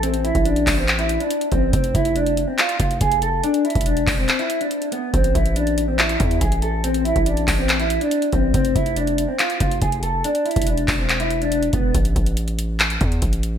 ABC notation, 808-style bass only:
X:1
M:4/4
L:1/16
Q:1/4=141
K:Am
V:1 name="808-style bass" clef=bass
A,,,3 A,,,3 A,,,4- A,,, z3 A,,,2 | F,,,2 F,,,4- F,,, z3 F,,,2 F,,,4 | z3 E,,,3 E,,,2 z8 | A,,,2 A,,,8 E,,2 A,,,4- |
A,,,3 A,,,3 A,,,4- A,,, z3 A,,,2 | F,,,2 F,,,4- F,,, z3 F,,,2 F,,,4 | z3 E,,,3 E,,,8 E,,,2 | A,,,2 A,,,8 E,,2 A,,,4 |]